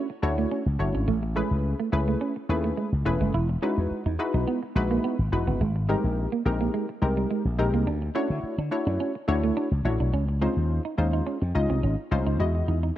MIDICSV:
0, 0, Header, 1, 6, 480
1, 0, Start_track
1, 0, Tempo, 566038
1, 913, Time_signature, 4, 2, 24, 8
1, 11003, End_track
2, 0, Start_track
2, 0, Title_t, "Analog polysynth"
2, 0, Program_c, 0, 90
2, 190, Note_on_c, 0, 57, 103
2, 192, Note_on_c, 0, 62, 94
2, 193, Note_on_c, 0, 64, 96
2, 195, Note_on_c, 0, 66, 91
2, 197, Note_on_c, 0, 73, 115
2, 529, Note_off_c, 0, 57, 0
2, 530, Note_off_c, 0, 62, 0
2, 531, Note_off_c, 0, 64, 0
2, 532, Note_off_c, 0, 66, 0
2, 533, Note_off_c, 0, 73, 0
2, 670, Note_on_c, 0, 57, 84
2, 672, Note_on_c, 0, 62, 80
2, 673, Note_on_c, 0, 64, 73
2, 676, Note_on_c, 0, 66, 73
2, 677, Note_on_c, 0, 73, 96
2, 912, Note_off_c, 0, 57, 0
2, 913, Note_off_c, 0, 62, 0
2, 913, Note_off_c, 0, 64, 0
2, 915, Note_off_c, 0, 66, 0
2, 915, Note_off_c, 0, 73, 0
2, 1150, Note_on_c, 0, 57, 92
2, 1153, Note_on_c, 0, 61, 87
2, 1155, Note_on_c, 0, 64, 81
2, 1156, Note_on_c, 0, 68, 84
2, 1158, Note_on_c, 0, 71, 108
2, 1490, Note_off_c, 0, 57, 0
2, 1491, Note_off_c, 0, 61, 0
2, 1492, Note_off_c, 0, 64, 0
2, 1492, Note_off_c, 0, 68, 0
2, 1493, Note_off_c, 0, 71, 0
2, 1630, Note_on_c, 0, 57, 93
2, 1633, Note_on_c, 0, 61, 85
2, 1633, Note_on_c, 0, 64, 85
2, 1636, Note_on_c, 0, 68, 82
2, 1637, Note_on_c, 0, 71, 107
2, 1969, Note_off_c, 0, 57, 0
2, 1971, Note_off_c, 0, 61, 0
2, 1971, Note_off_c, 0, 64, 0
2, 1972, Note_off_c, 0, 68, 0
2, 1973, Note_off_c, 0, 71, 0
2, 2113, Note_on_c, 0, 57, 95
2, 2114, Note_on_c, 0, 61, 83
2, 2116, Note_on_c, 0, 64, 84
2, 2117, Note_on_c, 0, 68, 86
2, 2119, Note_on_c, 0, 71, 104
2, 2451, Note_off_c, 0, 57, 0
2, 2452, Note_off_c, 0, 61, 0
2, 2453, Note_off_c, 0, 64, 0
2, 2453, Note_off_c, 0, 68, 0
2, 2454, Note_off_c, 0, 71, 0
2, 2589, Note_on_c, 0, 57, 100
2, 2591, Note_on_c, 0, 61, 93
2, 2593, Note_on_c, 0, 64, 93
2, 2594, Note_on_c, 0, 68, 91
2, 2596, Note_on_c, 0, 71, 111
2, 2831, Note_off_c, 0, 57, 0
2, 2832, Note_off_c, 0, 61, 0
2, 2833, Note_off_c, 0, 64, 0
2, 2834, Note_off_c, 0, 68, 0
2, 2835, Note_off_c, 0, 71, 0
2, 3071, Note_on_c, 0, 56, 93
2, 3073, Note_on_c, 0, 63, 86
2, 3075, Note_on_c, 0, 64, 89
2, 3077, Note_on_c, 0, 66, 84
2, 3078, Note_on_c, 0, 71, 100
2, 3410, Note_off_c, 0, 56, 0
2, 3411, Note_off_c, 0, 63, 0
2, 3412, Note_off_c, 0, 64, 0
2, 3413, Note_off_c, 0, 66, 0
2, 3414, Note_off_c, 0, 71, 0
2, 3552, Note_on_c, 0, 56, 100
2, 3554, Note_on_c, 0, 63, 94
2, 3556, Note_on_c, 0, 64, 89
2, 3557, Note_on_c, 0, 66, 94
2, 3559, Note_on_c, 0, 71, 111
2, 3891, Note_off_c, 0, 56, 0
2, 3891, Note_off_c, 0, 63, 0
2, 3892, Note_off_c, 0, 64, 0
2, 3893, Note_off_c, 0, 66, 0
2, 3894, Note_off_c, 0, 71, 0
2, 4032, Note_on_c, 0, 56, 106
2, 4035, Note_on_c, 0, 63, 97
2, 4036, Note_on_c, 0, 64, 95
2, 4037, Note_on_c, 0, 66, 91
2, 4040, Note_on_c, 0, 71, 115
2, 4371, Note_off_c, 0, 56, 0
2, 4372, Note_off_c, 0, 63, 0
2, 4372, Note_off_c, 0, 64, 0
2, 4373, Note_off_c, 0, 66, 0
2, 4374, Note_off_c, 0, 71, 0
2, 4513, Note_on_c, 0, 56, 90
2, 4514, Note_on_c, 0, 63, 80
2, 4515, Note_on_c, 0, 64, 76
2, 4518, Note_on_c, 0, 66, 80
2, 4518, Note_on_c, 0, 71, 96
2, 4753, Note_off_c, 0, 56, 0
2, 4754, Note_off_c, 0, 63, 0
2, 4754, Note_off_c, 0, 64, 0
2, 4756, Note_off_c, 0, 66, 0
2, 4756, Note_off_c, 0, 71, 0
2, 4991, Note_on_c, 0, 56, 93
2, 4993, Note_on_c, 0, 60, 87
2, 4995, Note_on_c, 0, 63, 84
2, 4996, Note_on_c, 0, 67, 88
2, 4998, Note_on_c, 0, 70, 105
2, 5330, Note_off_c, 0, 56, 0
2, 5331, Note_off_c, 0, 60, 0
2, 5332, Note_off_c, 0, 63, 0
2, 5333, Note_off_c, 0, 67, 0
2, 5333, Note_off_c, 0, 70, 0
2, 5473, Note_on_c, 0, 56, 94
2, 5475, Note_on_c, 0, 60, 82
2, 5476, Note_on_c, 0, 63, 84
2, 5477, Note_on_c, 0, 67, 84
2, 5479, Note_on_c, 0, 70, 107
2, 5811, Note_off_c, 0, 56, 0
2, 5812, Note_off_c, 0, 60, 0
2, 5813, Note_off_c, 0, 63, 0
2, 5813, Note_off_c, 0, 67, 0
2, 5814, Note_off_c, 0, 70, 0
2, 5950, Note_on_c, 0, 56, 88
2, 5951, Note_on_c, 0, 60, 80
2, 5953, Note_on_c, 0, 63, 83
2, 5955, Note_on_c, 0, 67, 82
2, 5956, Note_on_c, 0, 70, 102
2, 6289, Note_off_c, 0, 56, 0
2, 6290, Note_off_c, 0, 60, 0
2, 6291, Note_off_c, 0, 63, 0
2, 6292, Note_off_c, 0, 67, 0
2, 6292, Note_off_c, 0, 70, 0
2, 6431, Note_on_c, 0, 56, 107
2, 6433, Note_on_c, 0, 60, 94
2, 6435, Note_on_c, 0, 63, 96
2, 6436, Note_on_c, 0, 67, 90
2, 6437, Note_on_c, 0, 70, 108
2, 6672, Note_off_c, 0, 56, 0
2, 6673, Note_off_c, 0, 60, 0
2, 6674, Note_off_c, 0, 63, 0
2, 6675, Note_off_c, 0, 67, 0
2, 6675, Note_off_c, 0, 70, 0
2, 6908, Note_on_c, 0, 57, 95
2, 6911, Note_on_c, 0, 62, 92
2, 6912, Note_on_c, 0, 64, 85
2, 6915, Note_on_c, 0, 66, 89
2, 6916, Note_on_c, 0, 73, 105
2, 7249, Note_off_c, 0, 57, 0
2, 7250, Note_off_c, 0, 62, 0
2, 7250, Note_off_c, 0, 64, 0
2, 7252, Note_off_c, 0, 66, 0
2, 7253, Note_off_c, 0, 73, 0
2, 7388, Note_on_c, 0, 57, 104
2, 7390, Note_on_c, 0, 62, 90
2, 7392, Note_on_c, 0, 64, 95
2, 7392, Note_on_c, 0, 66, 90
2, 7395, Note_on_c, 0, 73, 107
2, 7728, Note_off_c, 0, 57, 0
2, 7729, Note_off_c, 0, 62, 0
2, 7731, Note_off_c, 0, 64, 0
2, 7731, Note_off_c, 0, 66, 0
2, 7732, Note_off_c, 0, 73, 0
2, 7867, Note_on_c, 0, 57, 108
2, 7869, Note_on_c, 0, 62, 99
2, 7870, Note_on_c, 0, 64, 98
2, 7873, Note_on_c, 0, 66, 98
2, 7873, Note_on_c, 0, 73, 112
2, 8208, Note_off_c, 0, 57, 0
2, 8209, Note_off_c, 0, 62, 0
2, 8209, Note_off_c, 0, 64, 0
2, 8211, Note_off_c, 0, 66, 0
2, 8211, Note_off_c, 0, 73, 0
2, 8350, Note_on_c, 0, 57, 85
2, 8351, Note_on_c, 0, 62, 78
2, 8353, Note_on_c, 0, 64, 82
2, 8355, Note_on_c, 0, 66, 81
2, 8356, Note_on_c, 0, 73, 94
2, 8592, Note_off_c, 0, 57, 0
2, 8593, Note_off_c, 0, 62, 0
2, 8593, Note_off_c, 0, 64, 0
2, 8594, Note_off_c, 0, 66, 0
2, 8595, Note_off_c, 0, 73, 0
2, 8830, Note_on_c, 0, 56, 93
2, 8831, Note_on_c, 0, 61, 86
2, 8833, Note_on_c, 0, 63, 83
2, 8835, Note_on_c, 0, 65, 84
2, 8836, Note_on_c, 0, 72, 104
2, 9170, Note_off_c, 0, 56, 0
2, 9170, Note_off_c, 0, 61, 0
2, 9171, Note_off_c, 0, 63, 0
2, 9172, Note_off_c, 0, 65, 0
2, 9172, Note_off_c, 0, 72, 0
2, 9308, Note_on_c, 0, 56, 95
2, 9309, Note_on_c, 0, 61, 82
2, 9312, Note_on_c, 0, 63, 82
2, 9313, Note_on_c, 0, 65, 85
2, 9314, Note_on_c, 0, 72, 100
2, 9648, Note_off_c, 0, 56, 0
2, 9649, Note_off_c, 0, 61, 0
2, 9650, Note_off_c, 0, 63, 0
2, 9651, Note_off_c, 0, 65, 0
2, 9651, Note_off_c, 0, 72, 0
2, 9791, Note_on_c, 0, 56, 91
2, 9793, Note_on_c, 0, 61, 86
2, 9794, Note_on_c, 0, 63, 84
2, 9795, Note_on_c, 0, 65, 87
2, 9797, Note_on_c, 0, 75, 99
2, 10130, Note_off_c, 0, 56, 0
2, 10131, Note_off_c, 0, 61, 0
2, 10132, Note_off_c, 0, 63, 0
2, 10132, Note_off_c, 0, 65, 0
2, 10133, Note_off_c, 0, 75, 0
2, 10271, Note_on_c, 0, 56, 99
2, 10273, Note_on_c, 0, 61, 97
2, 10274, Note_on_c, 0, 63, 92
2, 10275, Note_on_c, 0, 65, 93
2, 10278, Note_on_c, 0, 72, 108
2, 10500, Note_off_c, 0, 56, 0
2, 10510, Note_on_c, 0, 56, 93
2, 10512, Note_on_c, 0, 64, 78
2, 10513, Note_off_c, 0, 61, 0
2, 10514, Note_off_c, 0, 63, 0
2, 10514, Note_off_c, 0, 65, 0
2, 10514, Note_on_c, 0, 66, 85
2, 10516, Note_off_c, 0, 72, 0
2, 10516, Note_on_c, 0, 75, 97
2, 10849, Note_off_c, 0, 56, 0
2, 10850, Note_off_c, 0, 64, 0
2, 10852, Note_off_c, 0, 66, 0
2, 10853, Note_off_c, 0, 75, 0
2, 11003, End_track
3, 0, Start_track
3, 0, Title_t, "Clean electric guitar"
3, 0, Program_c, 1, 27
3, 323, Note_on_c, 1, 57, 78
3, 414, Note_off_c, 1, 57, 0
3, 436, Note_on_c, 1, 61, 89
3, 538, Note_off_c, 1, 61, 0
3, 803, Note_on_c, 1, 61, 76
3, 894, Note_off_c, 1, 61, 0
3, 915, Note_on_c, 1, 57, 96
3, 1017, Note_off_c, 1, 57, 0
3, 1155, Note_on_c, 1, 56, 76
3, 1258, Note_off_c, 1, 56, 0
3, 1523, Note_on_c, 1, 57, 75
3, 1613, Note_off_c, 1, 57, 0
3, 1763, Note_on_c, 1, 57, 71
3, 1854, Note_off_c, 1, 57, 0
3, 1874, Note_on_c, 1, 61, 85
3, 1977, Note_off_c, 1, 61, 0
3, 2240, Note_on_c, 1, 57, 81
3, 2332, Note_off_c, 1, 57, 0
3, 2353, Note_on_c, 1, 56, 77
3, 2456, Note_off_c, 1, 56, 0
3, 2721, Note_on_c, 1, 56, 79
3, 2812, Note_off_c, 1, 56, 0
3, 2835, Note_on_c, 1, 64, 87
3, 2938, Note_off_c, 1, 64, 0
3, 3075, Note_on_c, 1, 61, 82
3, 3178, Note_off_c, 1, 61, 0
3, 3443, Note_on_c, 1, 63, 70
3, 3533, Note_off_c, 1, 63, 0
3, 3682, Note_on_c, 1, 63, 76
3, 3773, Note_off_c, 1, 63, 0
3, 3795, Note_on_c, 1, 59, 93
3, 3898, Note_off_c, 1, 59, 0
3, 4162, Note_on_c, 1, 58, 78
3, 4253, Note_off_c, 1, 58, 0
3, 4275, Note_on_c, 1, 59, 93
3, 4378, Note_off_c, 1, 59, 0
3, 4642, Note_on_c, 1, 59, 73
3, 4733, Note_off_c, 1, 59, 0
3, 4758, Note_on_c, 1, 56, 88
3, 4859, Note_off_c, 1, 56, 0
3, 4995, Note_on_c, 1, 55, 81
3, 5098, Note_off_c, 1, 55, 0
3, 5362, Note_on_c, 1, 58, 73
3, 5453, Note_off_c, 1, 58, 0
3, 5603, Note_on_c, 1, 58, 76
3, 5694, Note_off_c, 1, 58, 0
3, 5716, Note_on_c, 1, 56, 87
3, 5818, Note_off_c, 1, 56, 0
3, 6082, Note_on_c, 1, 55, 77
3, 6173, Note_off_c, 1, 55, 0
3, 6195, Note_on_c, 1, 56, 80
3, 6298, Note_off_c, 1, 56, 0
3, 6562, Note_on_c, 1, 58, 82
3, 6653, Note_off_c, 1, 58, 0
3, 6675, Note_on_c, 1, 62, 88
3, 6778, Note_off_c, 1, 62, 0
3, 6914, Note_on_c, 1, 61, 87
3, 7017, Note_off_c, 1, 61, 0
3, 7281, Note_on_c, 1, 62, 69
3, 7372, Note_off_c, 1, 62, 0
3, 7521, Note_on_c, 1, 62, 78
3, 7613, Note_off_c, 1, 62, 0
3, 7634, Note_on_c, 1, 61, 93
3, 7737, Note_off_c, 1, 61, 0
3, 8001, Note_on_c, 1, 57, 80
3, 8093, Note_off_c, 1, 57, 0
3, 8114, Note_on_c, 1, 62, 94
3, 8217, Note_off_c, 1, 62, 0
3, 8481, Note_on_c, 1, 62, 75
3, 8573, Note_off_c, 1, 62, 0
3, 8595, Note_on_c, 1, 61, 94
3, 8698, Note_off_c, 1, 61, 0
3, 8833, Note_on_c, 1, 60, 78
3, 8937, Note_off_c, 1, 60, 0
3, 9201, Note_on_c, 1, 63, 74
3, 9292, Note_off_c, 1, 63, 0
3, 9441, Note_on_c, 1, 63, 76
3, 9533, Note_off_c, 1, 63, 0
3, 9553, Note_on_c, 1, 61, 86
3, 9657, Note_off_c, 1, 61, 0
3, 9920, Note_on_c, 1, 60, 79
3, 10012, Note_off_c, 1, 60, 0
3, 10035, Note_on_c, 1, 61, 77
3, 10137, Note_off_c, 1, 61, 0
3, 10401, Note_on_c, 1, 63, 79
3, 10493, Note_off_c, 1, 63, 0
3, 10755, Note_on_c, 1, 63, 72
3, 10858, Note_off_c, 1, 63, 0
3, 10882, Note_on_c, 1, 63, 65
3, 10973, Note_off_c, 1, 63, 0
3, 11003, End_track
4, 0, Start_track
4, 0, Title_t, "Slap bass"
4, 0, Program_c, 2, 36
4, 194, Note_on_c, 2, 38, 92
4, 378, Note_off_c, 2, 38, 0
4, 561, Note_on_c, 2, 37, 95
4, 648, Note_off_c, 2, 37, 0
4, 674, Note_on_c, 2, 30, 104
4, 772, Note_off_c, 2, 30, 0
4, 799, Note_on_c, 2, 32, 89
4, 886, Note_off_c, 2, 32, 0
4, 913, Note_on_c, 2, 33, 107
4, 1195, Note_off_c, 2, 33, 0
4, 1281, Note_on_c, 2, 37, 92
4, 1465, Note_off_c, 2, 37, 0
4, 1633, Note_on_c, 2, 37, 102
4, 1818, Note_off_c, 2, 37, 0
4, 2113, Note_on_c, 2, 39, 92
4, 2297, Note_off_c, 2, 39, 0
4, 2480, Note_on_c, 2, 37, 90
4, 2567, Note_off_c, 2, 37, 0
4, 2593, Note_on_c, 2, 28, 103
4, 2691, Note_off_c, 2, 28, 0
4, 2722, Note_on_c, 2, 30, 89
4, 2808, Note_off_c, 2, 30, 0
4, 2834, Note_on_c, 2, 28, 113
4, 3018, Note_off_c, 2, 28, 0
4, 3203, Note_on_c, 2, 40, 98
4, 3289, Note_off_c, 2, 40, 0
4, 3442, Note_on_c, 2, 40, 102
4, 3528, Note_off_c, 2, 40, 0
4, 3681, Note_on_c, 2, 35, 95
4, 3767, Note_off_c, 2, 35, 0
4, 4033, Note_on_c, 2, 34, 95
4, 4218, Note_off_c, 2, 34, 0
4, 4400, Note_on_c, 2, 32, 94
4, 4487, Note_off_c, 2, 32, 0
4, 4515, Note_on_c, 2, 28, 93
4, 4612, Note_off_c, 2, 28, 0
4, 4642, Note_on_c, 2, 30, 89
4, 4728, Note_off_c, 2, 30, 0
4, 4754, Note_on_c, 2, 32, 117
4, 5036, Note_off_c, 2, 32, 0
4, 5122, Note_on_c, 2, 34, 93
4, 5306, Note_off_c, 2, 34, 0
4, 5474, Note_on_c, 2, 34, 89
4, 5658, Note_off_c, 2, 34, 0
4, 5953, Note_on_c, 2, 36, 98
4, 6138, Note_off_c, 2, 36, 0
4, 6319, Note_on_c, 2, 34, 92
4, 6406, Note_off_c, 2, 34, 0
4, 6433, Note_on_c, 2, 34, 91
4, 6531, Note_off_c, 2, 34, 0
4, 6560, Note_on_c, 2, 36, 92
4, 6647, Note_off_c, 2, 36, 0
4, 6670, Note_on_c, 2, 38, 110
4, 6856, Note_off_c, 2, 38, 0
4, 7040, Note_on_c, 2, 50, 106
4, 7127, Note_off_c, 2, 50, 0
4, 7278, Note_on_c, 2, 50, 100
4, 7366, Note_off_c, 2, 50, 0
4, 7519, Note_on_c, 2, 42, 103
4, 7606, Note_off_c, 2, 42, 0
4, 7873, Note_on_c, 2, 38, 91
4, 8057, Note_off_c, 2, 38, 0
4, 8238, Note_on_c, 2, 37, 89
4, 8326, Note_off_c, 2, 37, 0
4, 8352, Note_on_c, 2, 33, 107
4, 8450, Note_off_c, 2, 33, 0
4, 8480, Note_on_c, 2, 35, 86
4, 8567, Note_off_c, 2, 35, 0
4, 8592, Note_on_c, 2, 37, 111
4, 8874, Note_off_c, 2, 37, 0
4, 8960, Note_on_c, 2, 39, 100
4, 9145, Note_off_c, 2, 39, 0
4, 9313, Note_on_c, 2, 39, 91
4, 9497, Note_off_c, 2, 39, 0
4, 9682, Note_on_c, 2, 41, 99
4, 9768, Note_off_c, 2, 41, 0
4, 9796, Note_on_c, 2, 37, 97
4, 9893, Note_off_c, 2, 37, 0
4, 9922, Note_on_c, 2, 36, 92
4, 10008, Note_off_c, 2, 36, 0
4, 10035, Note_on_c, 2, 32, 99
4, 10132, Note_off_c, 2, 32, 0
4, 10274, Note_on_c, 2, 36, 97
4, 10371, Note_off_c, 2, 36, 0
4, 10400, Note_on_c, 2, 37, 79
4, 10487, Note_off_c, 2, 37, 0
4, 10514, Note_on_c, 2, 40, 101
4, 10698, Note_off_c, 2, 40, 0
4, 10755, Note_on_c, 2, 40, 94
4, 10939, Note_off_c, 2, 40, 0
4, 11003, End_track
5, 0, Start_track
5, 0, Title_t, "Muted clean electric guitar strokes"
5, 83, Note_on_c, 9, 29, 46
5, 168, Note_off_c, 9, 29, 0
5, 677, Note_on_c, 9, 29, 45
5, 762, Note_off_c, 9, 29, 0
5, 1042, Note_on_c, 9, 29, 48
5, 1127, Note_off_c, 9, 29, 0
5, 1637, Note_on_c, 9, 29, 46
5, 1721, Note_off_c, 9, 29, 0
5, 2003, Note_on_c, 9, 29, 45
5, 2088, Note_off_c, 9, 29, 0
5, 2595, Note_on_c, 9, 29, 45
5, 2680, Note_off_c, 9, 29, 0
5, 2962, Note_on_c, 9, 29, 45
5, 3047, Note_off_c, 9, 29, 0
5, 3556, Note_on_c, 9, 29, 45
5, 3640, Note_off_c, 9, 29, 0
5, 3923, Note_on_c, 9, 29, 46
5, 4008, Note_off_c, 9, 29, 0
5, 4516, Note_on_c, 9, 29, 46
5, 4600, Note_off_c, 9, 29, 0
5, 4882, Note_on_c, 9, 29, 44
5, 4967, Note_off_c, 9, 29, 0
5, 5477, Note_on_c, 9, 29, 47
5, 5562, Note_off_c, 9, 29, 0
5, 5843, Note_on_c, 9, 29, 46
5, 5928, Note_off_c, 9, 29, 0
5, 6435, Note_on_c, 9, 29, 44
5, 6520, Note_off_c, 9, 29, 0
5, 6802, Note_on_c, 9, 29, 46
5, 6887, Note_off_c, 9, 29, 0
5, 7395, Note_on_c, 9, 29, 49
5, 7480, Note_off_c, 9, 29, 0
5, 7762, Note_on_c, 9, 29, 46
5, 7847, Note_off_c, 9, 29, 0
5, 8356, Note_on_c, 9, 29, 46
5, 8440, Note_off_c, 9, 29, 0
5, 8722, Note_on_c, 9, 29, 47
5, 8807, Note_off_c, 9, 29, 0
5, 9315, Note_on_c, 9, 29, 44
5, 9400, Note_off_c, 9, 29, 0
5, 9682, Note_on_c, 9, 29, 46
5, 9766, Note_off_c, 9, 29, 0
5, 10275, Note_on_c, 9, 29, 44
5, 10360, Note_off_c, 9, 29, 0
5, 10642, Note_on_c, 9, 29, 44
5, 10727, Note_off_c, 9, 29, 0
5, 11003, End_track
6, 0, Start_track
6, 0, Title_t, "Muted slap bass strokes"
6, 3316, Note_on_c, 9, 29, 49
6, 3400, Note_off_c, 9, 29, 0
6, 7152, Note_on_c, 9, 29, 54
6, 7236, Note_off_c, 9, 29, 0
6, 11003, End_track
0, 0, End_of_file